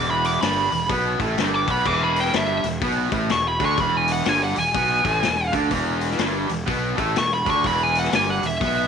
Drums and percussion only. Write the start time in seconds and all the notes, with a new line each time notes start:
0.24 open hi-hat
0.42 snare, open hi-hat
0.72 open hi-hat
0.90 kick, open hi-hat
1.20 kick, open hi-hat
1.38 snare, open hi-hat
1.68 kick, open hi-hat
1.86 kick, crash
2.16 open hi-hat
2.25 snare
2.34 snare, open hi-hat
2.64 open hi-hat
2.81 kick, open hi-hat
3.12 kick, open hi-hat
3.29 snare, open hi-hat
3.60 kick, open hi-hat
3.77 kick, open hi-hat
4.08 open hi-hat
4.25 snare, open hi-hat
4.56 open hi-hat
4.74 kick, open hi-hat
5.05 kick, open hi-hat
5.23 snare, open hi-hat
5.53 kick, open hi-hat
5.71 kick, open hi-hat
6.01 open hi-hat
6.11 snare
6.19 snare, open hi-hat
6.49 open hi-hat
6.68 kick, open hi-hat
6.98 kick, open hi-hat
7.16 snare, open hi-hat
7.46 kick, open hi-hat
7.64 kick, open hi-hat
7.95 open hi-hat
8.04 snare
8.13 snare, open hi-hat
8.43 open hi-hat
8.61 kick, open hi-hat